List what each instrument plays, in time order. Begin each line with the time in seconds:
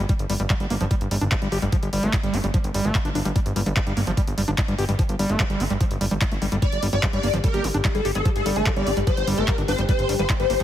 0.09 acid bass G3, kick, closed hi-hat
0.19 analog synth bass G1, closed hi-hat
0.30 analog synth bass G1, acid bass G3, open hi-hat
0.40 analog synth bass G1, acid bass G3, closed hi-hat
0.50 acid bass G3, kick, clap, closed hi-hat
0.60 analog synth bass G1, acid bass G3, closed hi-hat
0.70 analog synth bass G1, acid bass A#3, open hi-hat
0.81 analog synth bass G1, acid bass F3, closed hi-hat
0.91 acid bass G3, kick, closed hi-hat
1.01 analog synth bass G1, closed hi-hat
1.11 analog synth bass G1, acid bass G3, open hi-hat
1.21 analog synth bass G1, acid bass D4, closed hi-hat
1.32 acid bass G3, kick, clap, closed hi-hat
1.42 analog synth bass G1, acid bass G3, closed hi-hat
1.52 analog synth bass G1, acid bass G4, open hi-hat
1.62 analog synth bass G1, acid bass G3, closed hi-hat
1.72 acid bass F3, kick, closed hi-hat
1.83 analog synth bass G1, closed hi-hat
1.93 analog synth bass G1, acid bass G3, open hi-hat
2.03 analog synth bass G1, acid bass A3, closed hi-hat
2.13 acid bass F3, kick, clap, closed hi-hat
2.23 analog synth bass G1, acid bass G3, closed hi-hat
2.34 analog synth bass G1, acid bass D4, open hi-hat
2.44 analog synth bass G1, acid bass G3, closed hi-hat
2.54 acid bass F3, kick, closed hi-hat
2.64 analog synth bass G1, closed hi-hat
2.74 analog synth bass G1, acid bass G3, open hi-hat
2.85 analog synth bass G1, acid bass A3, closed hi-hat
2.95 acid bass F3, kick, clap, closed hi-hat
3.05 analog synth bass G1, acid bass D4, closed hi-hat
3.15 analog synth bass G1, acid bass D4, open hi-hat
3.25 analog synth bass G1, acid bass G3, closed hi-hat
3.36 acid bass G3, kick, closed hi-hat
3.46 analog synth bass G1, closed hi-hat
3.56 analog synth bass G1, acid bass G3, open hi-hat
3.66 analog synth bass G1, acid bass G3, closed hi-hat
3.76 acid bass G3, kick, clap, closed hi-hat
3.87 analog synth bass G1, acid bass G3, closed hi-hat
3.97 analog synth bass G1, acid bass A#3, open hi-hat
4.07 analog synth bass G1, acid bass F3, closed hi-hat
4.17 acid bass G3, kick, closed hi-hat
4.27 analog synth bass G1, closed hi-hat
4.38 analog synth bass G1, acid bass G3, open hi-hat
4.48 analog synth bass G1, acid bass D4, closed hi-hat
4.58 acid bass G3, kick, clap, closed hi-hat
4.68 analog synth bass G1, acid bass G3, closed hi-hat
4.79 analog synth bass G1, acid bass G4, open hi-hat
4.89 analog synth bass G1, acid bass G3, closed hi-hat
4.99 acid bass F3, kick, closed hi-hat
5.09 analog synth bass G1, closed hi-hat
5.19 analog synth bass G1, acid bass G3, open hi-hat
5.30 analog synth bass G1, acid bass A3, closed hi-hat
5.40 acid bass F3, kick, clap, closed hi-hat
5.50 analog synth bass G1, acid bass G3, closed hi-hat
5.60 analog synth bass G1, acid bass D4, open hi-hat
5.70 analog synth bass G1, acid bass G3, closed hi-hat
5.81 acid bass F3, kick, closed hi-hat
5.91 analog synth bass G1, closed hi-hat
6.01 analog synth bass G1, acid bass G3, open hi-hat
6.11 analog synth bass G1, acid bass G3, closed hi-hat
6.21 acid bass G3, kick, clap, closed hi-hat
6.32 analog synth bass G1, acid bass A3, closed hi-hat
6.42 analog synth bass G1, acid bass G3, open hi-hat
6.52 analog synth bass G1, acid bass G3, closed hi-hat
6.62 acid bass G3, synth drone G3 G4, digital synth lead D5, kick, closed hi-hat
6.72 analog synth bass G1, closed hi-hat
6.83 analog synth bass G1, acid bass G3, open hi-hat
6.93 analog synth bass G1, acid bass G3, digital synth lead D5, closed hi-hat
7.03 acid bass G3, kick, clap, closed hi-hat
7.13 analog synth bass G1, acid bass G3, digital synth lead D5, closed hi-hat
7.23 analog synth bass G1, acid bass A#3, open hi-hat
7.34 analog synth bass G1, acid bass F3, closed hi-hat
7.44 acid bass G3, digital synth lead A#4, kick, closed hi-hat
7.54 analog synth bass G1, acid bass G4, closed hi-hat
7.64 analog synth bass G1, acid bass G3, open hi-hat
7.74 analog synth bass G1, acid bass D4, closed hi-hat
7.85 acid bass G3, kick, clap, closed hi-hat
7.95 analog synth bass G1, acid bass G3, digital synth lead A4, closed hi-hat
8.05 analog synth bass G1, acid bass G4, open hi-hat
8.15 analog synth bass G1, acid bass G3, digital synth lead A4, closed hi-hat
8.25 acid bass F3, kick, closed hi-hat
8.36 analog synth bass G1, digital synth lead A4, closed hi-hat
8.46 analog synth bass G1, acid bass G3, open hi-hat
8.56 analog synth bass G1, acid bass A3, digital synth lead A4, closed hi-hat
8.66 acid bass F3, kick, clap, closed hi-hat
8.76 analog synth bass G1, acid bass G3, digital synth lead D5, closed hi-hat
8.87 analog synth bass G1, acid bass D4, open hi-hat
8.97 analog synth bass G1, acid bass G3, closed hi-hat
9.07 acid bass F3, digital synth lead C5, kick, closed hi-hat
9.17 analog synth bass G1, closed hi-hat
9.27 analog synth bass G1, acid bass G3, open hi-hat
9.38 analog synth bass G1, acid bass A3, digital synth lead A#4, closed hi-hat
9.48 acid bass F3, kick, clap, closed hi-hat
9.58 analog synth bass G1, acid bass D4, closed hi-hat
9.68 analog synth bass G1, acid bass D4, digital synth lead C5, open hi-hat
9.79 analog synth bass G1, acid bass G3, closed hi-hat
9.89 acid bass G3, digital synth lead C5, kick, closed hi-hat
9.99 analog synth bass G1, closed hi-hat
10.09 analog synth bass G1, acid bass G3, open hi-hat
10.19 analog synth bass G1, acid bass G3, digital synth lead C5, closed hi-hat
10.30 acid bass G3, kick, clap, closed hi-hat
10.40 analog synth bass G1, acid bass G3, digital synth lead C5, closed hi-hat
10.50 analog synth bass G1, acid bass A#3, open hi-hat
10.60 analog synth bass G1, acid bass F3, closed hi-hat